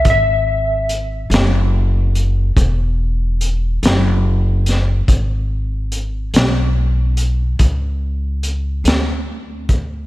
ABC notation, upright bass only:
X:1
M:12/8
L:1/8
Q:3/8=48
K:Emix
V:1 name="Upright bass" clef=bass
G,,,3 F,,,3 E,,,3 F,,,3 | G,,,3 B,,,3 C,,3 D,,3 |]